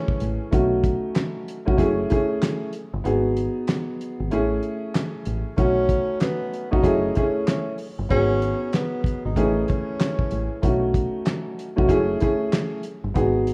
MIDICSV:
0, 0, Header, 1, 5, 480
1, 0, Start_track
1, 0, Tempo, 631579
1, 401, Time_signature, 4, 2, 24, 8
1, 10287, End_track
2, 0, Start_track
2, 0, Title_t, "Upright piano"
2, 0, Program_c, 0, 0
2, 0, Note_on_c, 0, 52, 97
2, 0, Note_on_c, 0, 57, 100
2, 0, Note_on_c, 0, 61, 93
2, 0, Note_on_c, 0, 68, 108
2, 338, Note_off_c, 0, 57, 0
2, 340, Note_off_c, 0, 61, 0
2, 343, Note_off_c, 0, 52, 0
2, 345, Note_off_c, 0, 68, 0
2, 389, Note_on_c, 0, 57, 98
2, 395, Note_on_c, 0, 61, 80
2, 400, Note_on_c, 0, 63, 90
2, 405, Note_on_c, 0, 66, 95
2, 1180, Note_off_c, 0, 57, 0
2, 1182, Note_off_c, 0, 61, 0
2, 1185, Note_off_c, 0, 63, 0
2, 1188, Note_off_c, 0, 66, 0
2, 1257, Note_on_c, 0, 57, 92
2, 1262, Note_on_c, 0, 61, 89
2, 1268, Note_on_c, 0, 63, 90
2, 1273, Note_on_c, 0, 66, 99
2, 1333, Note_off_c, 0, 57, 0
2, 1338, Note_off_c, 0, 61, 0
2, 1345, Note_on_c, 0, 57, 100
2, 1349, Note_on_c, 0, 61, 90
2, 1355, Note_on_c, 0, 64, 89
2, 1359, Note_on_c, 0, 68, 108
2, 1360, Note_off_c, 0, 63, 0
2, 1363, Note_off_c, 0, 66, 0
2, 1578, Note_off_c, 0, 57, 0
2, 1580, Note_off_c, 0, 61, 0
2, 1583, Note_off_c, 0, 64, 0
2, 1585, Note_off_c, 0, 68, 0
2, 1595, Note_on_c, 0, 57, 91
2, 1599, Note_on_c, 0, 61, 84
2, 1605, Note_on_c, 0, 64, 83
2, 1610, Note_on_c, 0, 68, 108
2, 2048, Note_off_c, 0, 57, 0
2, 2050, Note_off_c, 0, 61, 0
2, 2053, Note_off_c, 0, 64, 0
2, 2056, Note_off_c, 0, 68, 0
2, 2309, Note_on_c, 0, 59, 98
2, 2314, Note_on_c, 0, 63, 83
2, 2320, Note_on_c, 0, 66, 83
2, 2325, Note_on_c, 0, 68, 104
2, 3274, Note_on_c, 0, 57, 95
2, 3275, Note_off_c, 0, 59, 0
2, 3277, Note_off_c, 0, 63, 0
2, 3279, Note_off_c, 0, 68, 0
2, 3280, Note_off_c, 0, 66, 0
2, 3280, Note_on_c, 0, 61, 91
2, 3285, Note_on_c, 0, 64, 91
2, 3291, Note_on_c, 0, 68, 105
2, 4178, Note_off_c, 0, 57, 0
2, 4181, Note_off_c, 0, 61, 0
2, 4184, Note_off_c, 0, 64, 0
2, 4187, Note_off_c, 0, 68, 0
2, 4229, Note_on_c, 0, 57, 93
2, 4235, Note_on_c, 0, 61, 78
2, 4240, Note_on_c, 0, 63, 90
2, 4245, Note_on_c, 0, 66, 99
2, 5020, Note_off_c, 0, 57, 0
2, 5023, Note_off_c, 0, 61, 0
2, 5025, Note_off_c, 0, 63, 0
2, 5028, Note_off_c, 0, 66, 0
2, 5097, Note_on_c, 0, 57, 92
2, 5102, Note_on_c, 0, 61, 86
2, 5108, Note_on_c, 0, 63, 88
2, 5112, Note_on_c, 0, 66, 102
2, 5173, Note_off_c, 0, 57, 0
2, 5178, Note_off_c, 0, 61, 0
2, 5184, Note_on_c, 0, 57, 103
2, 5189, Note_on_c, 0, 61, 90
2, 5194, Note_on_c, 0, 64, 91
2, 5199, Note_on_c, 0, 68, 108
2, 5200, Note_off_c, 0, 63, 0
2, 5203, Note_off_c, 0, 66, 0
2, 5418, Note_off_c, 0, 57, 0
2, 5420, Note_off_c, 0, 61, 0
2, 5422, Note_off_c, 0, 64, 0
2, 5425, Note_off_c, 0, 68, 0
2, 5434, Note_on_c, 0, 57, 90
2, 5439, Note_on_c, 0, 61, 83
2, 5444, Note_on_c, 0, 64, 84
2, 5450, Note_on_c, 0, 68, 106
2, 5888, Note_off_c, 0, 57, 0
2, 5890, Note_off_c, 0, 61, 0
2, 5893, Note_off_c, 0, 64, 0
2, 5896, Note_off_c, 0, 68, 0
2, 6148, Note_on_c, 0, 59, 96
2, 6153, Note_on_c, 0, 63, 88
2, 6158, Note_on_c, 0, 66, 85
2, 6164, Note_on_c, 0, 68, 107
2, 7114, Note_on_c, 0, 57, 96
2, 7115, Note_off_c, 0, 59, 0
2, 7117, Note_off_c, 0, 63, 0
2, 7119, Note_off_c, 0, 66, 0
2, 7119, Note_off_c, 0, 68, 0
2, 7120, Note_on_c, 0, 61, 93
2, 7125, Note_on_c, 0, 52, 95
2, 7130, Note_on_c, 0, 68, 107
2, 8018, Note_off_c, 0, 57, 0
2, 8021, Note_off_c, 0, 61, 0
2, 8024, Note_off_c, 0, 52, 0
2, 8026, Note_off_c, 0, 68, 0
2, 8071, Note_on_c, 0, 57, 99
2, 8076, Note_on_c, 0, 61, 82
2, 8080, Note_on_c, 0, 63, 87
2, 8087, Note_on_c, 0, 66, 98
2, 8861, Note_off_c, 0, 57, 0
2, 8863, Note_off_c, 0, 61, 0
2, 8865, Note_off_c, 0, 63, 0
2, 8869, Note_off_c, 0, 66, 0
2, 8937, Note_on_c, 0, 57, 94
2, 8942, Note_on_c, 0, 61, 85
2, 8947, Note_on_c, 0, 63, 89
2, 8952, Note_on_c, 0, 66, 101
2, 9014, Note_off_c, 0, 57, 0
2, 9020, Note_off_c, 0, 61, 0
2, 9025, Note_on_c, 0, 57, 105
2, 9031, Note_on_c, 0, 61, 91
2, 9036, Note_on_c, 0, 64, 91
2, 9040, Note_off_c, 0, 63, 0
2, 9042, Note_on_c, 0, 68, 113
2, 9043, Note_off_c, 0, 66, 0
2, 9258, Note_off_c, 0, 57, 0
2, 9261, Note_off_c, 0, 61, 0
2, 9264, Note_off_c, 0, 64, 0
2, 9266, Note_off_c, 0, 68, 0
2, 9276, Note_on_c, 0, 57, 93
2, 9281, Note_on_c, 0, 61, 82
2, 9286, Note_on_c, 0, 64, 82
2, 9291, Note_on_c, 0, 68, 106
2, 9729, Note_off_c, 0, 57, 0
2, 9731, Note_off_c, 0, 61, 0
2, 9734, Note_off_c, 0, 64, 0
2, 9736, Note_off_c, 0, 68, 0
2, 9988, Note_on_c, 0, 59, 97
2, 9993, Note_on_c, 0, 63, 88
2, 9999, Note_on_c, 0, 66, 89
2, 10004, Note_on_c, 0, 68, 105
2, 10287, Note_off_c, 0, 59, 0
2, 10287, Note_off_c, 0, 63, 0
2, 10287, Note_off_c, 0, 66, 0
2, 10287, Note_off_c, 0, 68, 0
2, 10287, End_track
3, 0, Start_track
3, 0, Title_t, "Tenor saxophone"
3, 0, Program_c, 1, 66
3, 0, Note_on_c, 1, 61, 92
3, 370, Note_off_c, 1, 61, 0
3, 4237, Note_on_c, 1, 61, 105
3, 4690, Note_off_c, 1, 61, 0
3, 4723, Note_on_c, 1, 59, 93
3, 5086, Note_off_c, 1, 59, 0
3, 5108, Note_on_c, 1, 63, 85
3, 5420, Note_off_c, 1, 63, 0
3, 5444, Note_on_c, 1, 61, 79
3, 5659, Note_off_c, 1, 61, 0
3, 5684, Note_on_c, 1, 61, 88
3, 5899, Note_off_c, 1, 61, 0
3, 6162, Note_on_c, 1, 61, 119
3, 6613, Note_off_c, 1, 61, 0
3, 6646, Note_on_c, 1, 59, 93
3, 7008, Note_off_c, 1, 59, 0
3, 7034, Note_on_c, 1, 63, 82
3, 7344, Note_off_c, 1, 63, 0
3, 7361, Note_on_c, 1, 61, 87
3, 8050, Note_off_c, 1, 61, 0
3, 10287, End_track
4, 0, Start_track
4, 0, Title_t, "Fingered electric bass"
4, 0, Program_c, 2, 33
4, 164, Note_on_c, 2, 33, 92
4, 284, Note_off_c, 2, 33, 0
4, 402, Note_on_c, 2, 35, 109
4, 721, Note_off_c, 2, 35, 0
4, 1276, Note_on_c, 2, 35, 85
4, 1349, Note_off_c, 2, 35, 0
4, 1357, Note_on_c, 2, 30, 107
4, 1556, Note_off_c, 2, 30, 0
4, 2230, Note_on_c, 2, 31, 96
4, 2305, Note_off_c, 2, 31, 0
4, 2322, Note_on_c, 2, 32, 106
4, 2641, Note_off_c, 2, 32, 0
4, 3191, Note_on_c, 2, 32, 86
4, 3266, Note_off_c, 2, 32, 0
4, 3283, Note_on_c, 2, 33, 106
4, 3480, Note_off_c, 2, 33, 0
4, 4003, Note_on_c, 2, 33, 91
4, 4123, Note_off_c, 2, 33, 0
4, 4242, Note_on_c, 2, 35, 113
4, 4561, Note_off_c, 2, 35, 0
4, 5116, Note_on_c, 2, 35, 87
4, 5189, Note_off_c, 2, 35, 0
4, 5196, Note_on_c, 2, 30, 102
4, 5396, Note_off_c, 2, 30, 0
4, 6070, Note_on_c, 2, 31, 94
4, 6145, Note_off_c, 2, 31, 0
4, 6161, Note_on_c, 2, 32, 107
4, 6480, Note_off_c, 2, 32, 0
4, 7031, Note_on_c, 2, 32, 91
4, 7106, Note_off_c, 2, 32, 0
4, 7116, Note_on_c, 2, 33, 108
4, 7316, Note_off_c, 2, 33, 0
4, 7844, Note_on_c, 2, 33, 91
4, 7964, Note_off_c, 2, 33, 0
4, 8082, Note_on_c, 2, 35, 111
4, 8401, Note_off_c, 2, 35, 0
4, 8957, Note_on_c, 2, 35, 90
4, 9029, Note_off_c, 2, 35, 0
4, 9036, Note_on_c, 2, 30, 105
4, 9236, Note_off_c, 2, 30, 0
4, 9909, Note_on_c, 2, 31, 93
4, 9985, Note_off_c, 2, 31, 0
4, 10001, Note_on_c, 2, 32, 108
4, 10287, Note_off_c, 2, 32, 0
4, 10287, End_track
5, 0, Start_track
5, 0, Title_t, "Drums"
5, 63, Note_on_c, 9, 36, 104
5, 139, Note_off_c, 9, 36, 0
5, 154, Note_on_c, 9, 42, 85
5, 230, Note_off_c, 9, 42, 0
5, 399, Note_on_c, 9, 42, 80
5, 401, Note_on_c, 9, 36, 121
5, 475, Note_off_c, 9, 42, 0
5, 477, Note_off_c, 9, 36, 0
5, 636, Note_on_c, 9, 36, 106
5, 638, Note_on_c, 9, 42, 85
5, 712, Note_off_c, 9, 36, 0
5, 714, Note_off_c, 9, 42, 0
5, 872, Note_on_c, 9, 42, 90
5, 881, Note_on_c, 9, 39, 95
5, 882, Note_on_c, 9, 38, 117
5, 948, Note_off_c, 9, 42, 0
5, 957, Note_off_c, 9, 39, 0
5, 958, Note_off_c, 9, 38, 0
5, 1127, Note_on_c, 9, 42, 78
5, 1203, Note_off_c, 9, 42, 0
5, 1275, Note_on_c, 9, 36, 100
5, 1351, Note_off_c, 9, 36, 0
5, 1356, Note_on_c, 9, 36, 87
5, 1360, Note_on_c, 9, 42, 85
5, 1432, Note_off_c, 9, 36, 0
5, 1436, Note_off_c, 9, 42, 0
5, 1596, Note_on_c, 9, 42, 77
5, 1610, Note_on_c, 9, 36, 103
5, 1672, Note_off_c, 9, 42, 0
5, 1686, Note_off_c, 9, 36, 0
5, 1842, Note_on_c, 9, 42, 107
5, 1843, Note_on_c, 9, 39, 98
5, 1844, Note_on_c, 9, 38, 126
5, 1918, Note_off_c, 9, 42, 0
5, 1919, Note_off_c, 9, 39, 0
5, 1920, Note_off_c, 9, 38, 0
5, 2073, Note_on_c, 9, 42, 84
5, 2149, Note_off_c, 9, 42, 0
5, 2319, Note_on_c, 9, 42, 79
5, 2395, Note_off_c, 9, 42, 0
5, 2558, Note_on_c, 9, 42, 86
5, 2634, Note_off_c, 9, 42, 0
5, 2792, Note_on_c, 9, 42, 94
5, 2801, Note_on_c, 9, 39, 90
5, 2802, Note_on_c, 9, 38, 114
5, 2868, Note_off_c, 9, 42, 0
5, 2877, Note_off_c, 9, 39, 0
5, 2878, Note_off_c, 9, 38, 0
5, 3047, Note_on_c, 9, 42, 75
5, 3123, Note_off_c, 9, 42, 0
5, 3279, Note_on_c, 9, 42, 84
5, 3355, Note_off_c, 9, 42, 0
5, 3516, Note_on_c, 9, 42, 72
5, 3592, Note_off_c, 9, 42, 0
5, 3762, Note_on_c, 9, 42, 106
5, 3763, Note_on_c, 9, 39, 98
5, 3764, Note_on_c, 9, 38, 121
5, 3838, Note_off_c, 9, 42, 0
5, 3839, Note_off_c, 9, 39, 0
5, 3840, Note_off_c, 9, 38, 0
5, 3993, Note_on_c, 9, 42, 84
5, 4069, Note_off_c, 9, 42, 0
5, 4239, Note_on_c, 9, 42, 80
5, 4241, Note_on_c, 9, 36, 116
5, 4315, Note_off_c, 9, 42, 0
5, 4317, Note_off_c, 9, 36, 0
5, 4476, Note_on_c, 9, 36, 105
5, 4479, Note_on_c, 9, 42, 81
5, 4552, Note_off_c, 9, 36, 0
5, 4555, Note_off_c, 9, 42, 0
5, 4713, Note_on_c, 9, 42, 92
5, 4722, Note_on_c, 9, 39, 93
5, 4723, Note_on_c, 9, 38, 114
5, 4789, Note_off_c, 9, 42, 0
5, 4798, Note_off_c, 9, 39, 0
5, 4799, Note_off_c, 9, 38, 0
5, 4967, Note_on_c, 9, 42, 80
5, 5043, Note_off_c, 9, 42, 0
5, 5115, Note_on_c, 9, 36, 103
5, 5191, Note_off_c, 9, 36, 0
5, 5195, Note_on_c, 9, 36, 88
5, 5199, Note_on_c, 9, 42, 84
5, 5271, Note_off_c, 9, 36, 0
5, 5275, Note_off_c, 9, 42, 0
5, 5436, Note_on_c, 9, 42, 76
5, 5449, Note_on_c, 9, 36, 103
5, 5512, Note_off_c, 9, 42, 0
5, 5525, Note_off_c, 9, 36, 0
5, 5681, Note_on_c, 9, 42, 106
5, 5683, Note_on_c, 9, 39, 95
5, 5684, Note_on_c, 9, 38, 124
5, 5757, Note_off_c, 9, 42, 0
5, 5759, Note_off_c, 9, 39, 0
5, 5760, Note_off_c, 9, 38, 0
5, 5912, Note_on_c, 9, 46, 60
5, 5988, Note_off_c, 9, 46, 0
5, 6158, Note_on_c, 9, 42, 80
5, 6160, Note_on_c, 9, 36, 119
5, 6234, Note_off_c, 9, 42, 0
5, 6236, Note_off_c, 9, 36, 0
5, 6399, Note_on_c, 9, 42, 82
5, 6475, Note_off_c, 9, 42, 0
5, 6632, Note_on_c, 9, 42, 94
5, 6641, Note_on_c, 9, 39, 92
5, 6643, Note_on_c, 9, 38, 116
5, 6708, Note_off_c, 9, 42, 0
5, 6717, Note_off_c, 9, 39, 0
5, 6719, Note_off_c, 9, 38, 0
5, 6871, Note_on_c, 9, 36, 107
5, 6888, Note_on_c, 9, 42, 77
5, 6947, Note_off_c, 9, 36, 0
5, 6964, Note_off_c, 9, 42, 0
5, 7115, Note_on_c, 9, 36, 86
5, 7119, Note_on_c, 9, 42, 84
5, 7191, Note_off_c, 9, 36, 0
5, 7195, Note_off_c, 9, 42, 0
5, 7357, Note_on_c, 9, 42, 73
5, 7370, Note_on_c, 9, 36, 101
5, 7433, Note_off_c, 9, 42, 0
5, 7446, Note_off_c, 9, 36, 0
5, 7602, Note_on_c, 9, 42, 110
5, 7603, Note_on_c, 9, 39, 97
5, 7605, Note_on_c, 9, 38, 119
5, 7678, Note_off_c, 9, 42, 0
5, 7679, Note_off_c, 9, 39, 0
5, 7681, Note_off_c, 9, 38, 0
5, 7743, Note_on_c, 9, 36, 103
5, 7819, Note_off_c, 9, 36, 0
5, 7834, Note_on_c, 9, 42, 82
5, 7910, Note_off_c, 9, 42, 0
5, 8079, Note_on_c, 9, 42, 83
5, 8081, Note_on_c, 9, 36, 121
5, 8155, Note_off_c, 9, 42, 0
5, 8157, Note_off_c, 9, 36, 0
5, 8316, Note_on_c, 9, 36, 103
5, 8320, Note_on_c, 9, 42, 87
5, 8392, Note_off_c, 9, 36, 0
5, 8396, Note_off_c, 9, 42, 0
5, 8553, Note_on_c, 9, 42, 96
5, 8562, Note_on_c, 9, 39, 95
5, 8563, Note_on_c, 9, 38, 115
5, 8629, Note_off_c, 9, 42, 0
5, 8638, Note_off_c, 9, 39, 0
5, 8639, Note_off_c, 9, 38, 0
5, 8808, Note_on_c, 9, 42, 80
5, 8884, Note_off_c, 9, 42, 0
5, 8955, Note_on_c, 9, 36, 101
5, 9031, Note_off_c, 9, 36, 0
5, 9035, Note_on_c, 9, 36, 87
5, 9039, Note_on_c, 9, 42, 86
5, 9111, Note_off_c, 9, 36, 0
5, 9115, Note_off_c, 9, 42, 0
5, 9275, Note_on_c, 9, 42, 78
5, 9289, Note_on_c, 9, 36, 104
5, 9351, Note_off_c, 9, 42, 0
5, 9365, Note_off_c, 9, 36, 0
5, 9521, Note_on_c, 9, 42, 108
5, 9522, Note_on_c, 9, 39, 100
5, 9524, Note_on_c, 9, 38, 122
5, 9597, Note_off_c, 9, 42, 0
5, 9598, Note_off_c, 9, 39, 0
5, 9600, Note_off_c, 9, 38, 0
5, 9752, Note_on_c, 9, 42, 84
5, 9828, Note_off_c, 9, 42, 0
5, 9997, Note_on_c, 9, 42, 80
5, 10000, Note_on_c, 9, 36, 123
5, 10073, Note_off_c, 9, 42, 0
5, 10076, Note_off_c, 9, 36, 0
5, 10237, Note_on_c, 9, 42, 84
5, 10287, Note_off_c, 9, 42, 0
5, 10287, End_track
0, 0, End_of_file